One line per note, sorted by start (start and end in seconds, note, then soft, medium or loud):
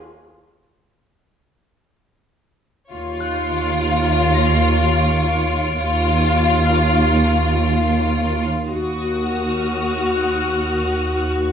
0.00 1.92 G#6 soft
2.91 5.76 D#2 soft
2.91 5.76 F4 soft
2.91 8.36 C#5 soft
3.20 7.10 F#6 soft
3.49 8.36 D7 soft
4.34 8.24 A#6 soft
5.80 8.45 D#2 soft
5.80 8.45 F4 soft
6.65 8.70 F6 soft
8.68 11.52 D#2 soft
8.68 11.52 F#4 soft
8.68 11.24 D#6 soft
9.27 11.25 F6 soft
9.86 11.25 F#6 soft